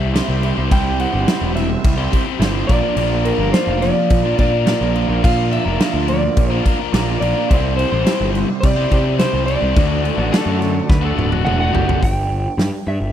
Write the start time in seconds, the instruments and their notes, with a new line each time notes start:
Already playing: picked electric bass C2, overdriven electric guitar C4 E4 G4 C5, tonewheel organ C4 E4 G4 C5, electric slide guitar E5
0.14 overdriven electric guitar C3 G3 C4 E4 G4 C5, snare, crash
0.28 picked electric bass C2, overdriven electric guitar C4 E4 G4 C5
0.41 overdriven electric guitar C4 E4 G4 C5, crash
0.57 picked electric bass C2, overdriven electric guitar C4 E4 G4 C5
0.70 picked electric bass C2, overdriven electric guitar C3 G3 C4 E4 G4 C5, tonewheel organ C4 E4 G4 C5, electric slide guitar G5, kick, crash
0.98 overdriven electric guitar C4 E4 G4 C5, electric slide guitar F#5, crash
1.12 picked electric bass G1, overdriven electric guitar C4 E4 G4 C5
1.26 overdriven electric guitar C3 G3 C4 E4 G4 C5, snare, crash
1.41 picked electric bass E1, overdriven electric guitar C4 E4 G4 C5
1.56 electric slide guitar E5, muted overdriven electric guitar stroke, snare, crash
1.70 muted overdriven electric guitar stroke
1.84 picked electric bass C2, kick, crash
1.98 overdriven electric guitar C4 E4 G4 C5
2.12 overdriven electric guitar C4 E4 G4 C5, kick, crash
2.26 muted overdriven electric guitar stroke
2.40 picked electric bass G1, overdriven electric guitar C3 G3 C4 E4 G4 C5, snare, crash
2.54 overdriven electric guitar C4 E4 G4 C5
2.67 picked electric bass A#1, overdriven electric guitar A#2 F3 A#3 D4 F4 A#4, tonewheel organ F4, electric slide guitar D5, kick, crash
2.71 tonewheel organ D4 A#4 D5
2.82 overdriven electric guitar A#3 D4 F4 A#4
2.96 picked electric bass A#1, overdriven electric guitar A#2 F3 A#3 D4 F4 A#4, crash
3.25 overdriven electric guitar A#3 D4 F4 A#4, electric slide guitar A#4, crash
3.38 picked electric bass G1, overdriven electric guitar A#3 D4 F4 A#4
3.53 overdriven electric guitar A#2 F3 A#3 D4 F4 A#4, electric slide guitar C5, snare, crash
3.67 picked electric bass F1, overdriven electric guitar A#3 D4 F4 A#4
3.82 electric slide guitar D5, muted overdriven electric guitar stroke, snare, crash
3.95 muted overdriven electric guitar stroke
4.10 picked electric bass A#2, kick, crash
4.25 overdriven electric guitar A#3 D4 F4 A#4
4.38 picked electric bass A#2, overdriven electric guitar A#3 D4 F4 A#4, electric slide guitar D5, kick, crash
4.53 muted overdriven electric guitar stroke
4.67 overdriven electric guitar A#2 F3 A#3 D4 F4 A#4, snare, crash
4.80 picked electric bass A#1, overdriven electric guitar A#3 D4 F4 A#4
4.94 overdriven electric guitar A#3 D4 F4 A#4, tonewheel organ D4 F4 A#4 D5, crash
5.09 picked electric bass A#1, overdriven electric guitar A#3 D4 F4 A#4
5.23 overdriven electric guitar A#2 F3 A#3 D4 F4 A#4, picked electric bass A#2, electric slide guitar F5, kick, crash
5.50 overdriven electric guitar A#3 D4 F4 A#4, electric slide guitar E5, crash
5.65 picked electric bass F1, overdriven electric guitar A#3 D4 F4 A#4
5.79 overdriven electric guitar A#2 F3 A#3 D4 F4 A#4, snare, crash
5.94 picked electric bass D2, overdriven electric guitar A#3 D4 F4 A#4
6.08 electric slide guitar D5, muted overdriven electric guitar stroke, crash
6.22 muted overdriven electric guitar stroke
6.37 picked electric bass A#1, kick, crash
6.50 overdriven electric guitar A#3 D4 F4 A#4, electric slide guitar C5
6.64 overdriven electric guitar A#3 D4 F4 A#4, kick, crash
6.80 muted overdriven electric guitar stroke
6.93 picked electric bass A#1, overdriven electric guitar A#2 F3 A#3 D4 F4 A#4, snare, crash
7.07 overdriven electric guitar A#3 D4 F4 A#4
7.20 picked electric bass A#1, overdriven electric guitar A#3 D4 F4 A#4, electric slide guitar D5, crash
7.34 overdriven electric guitar A#3 D4 F4 A#4
7.49 picked electric bass C2, overdriven electric guitar C3 G3 C4 E4 G4 C5, tonewheel organ C4 E4 G4 C5, kick, crash
7.77 overdriven electric guitar C4 E4 G4 C5, electric slide guitar C5, crash
7.91 picked electric bass A1, overdriven electric guitar C4 E4 G4 C5
8.04 overdriven electric guitar C3 G3 C4 E4 G4 C5, snare, crash
8.18 picked electric bass G1, overdriven electric guitar C4 E4 G4 C5
8.34 muted overdriven electric guitar stroke, snare, crash
8.49 muted overdriven electric guitar stroke
8.61 picked electric bass C3, electric slide guitar D5, kick, crash
8.76 overdriven electric guitar C4 E4 G4 C5
8.91 picked electric bass C3, overdriven electric guitar C4 E4 G4 C5, kick, crash
9.05 muted overdriven electric guitar stroke
9.18 overdriven electric guitar C3 G3 C4 E4 G4 C5, electric slide guitar C5, snare, crash
9.33 picked electric bass C2, overdriven electric guitar C4 E4 G4 C5
9.46 overdriven electric guitar C4 E4 G4 C5, electric slide guitar D5, crash
9.61 picked electric bass C2, overdriven electric guitar C4 E4 G4 C5
9.75 overdriven electric guitar D2 A2 D3 A3 F#4, picked electric bass D2, tonewheel organ D4 F#4 A4 D5, kick, crash
10.03 overdriven electric guitar A2 D3 A3 F#4, crash
10.17 picked electric bass A1, overdriven electric guitar D3 A3 F#4
10.32 overdriven electric guitar D2 A2 D3 A3 F#4, lead electric guitar A4, snare, crash
10.46 picked electric bass F#2, overdriven electric guitar D3 A3 F#4
10.59 muted overdriven electric guitar stroke, snare, crash
10.74 muted overdriven electric guitar stroke
10.89 picked electric bass D2, lead electric guitar B4, kick, snare
11.01 overdriven electric guitar D3 A3 F#4, lead electric guitar A4
11.16 picked electric bass D1, overdriven electric guitar A2 D3 A3 F#4, high tom
11.31 lead electric guitar F#4, muted overdriven electric guitar stroke, high tom
11.45 picked electric bass E1, overdriven electric guitar D2 A2 D3 A3 F#4, electric slide guitar F#5, mid tom
11.59 overdriven electric guitar D3 A3 F#4, electric slide guitar F#5
11.73 picked electric bass F#1, overdriven electric guitar A2 D3 A3 F#4, lead electric guitar G4, floor tom
11.88 overdriven electric guitar D3 A3 F#4, floor tom
12.02 picked electric bass G1, electric slide guitar G5, kick, open hi-hat
12.58 picked electric bass G2, snare, open hi-hat
12.87 picked electric bass G2, electric slide guitar E5
13.00 picked electric bass G1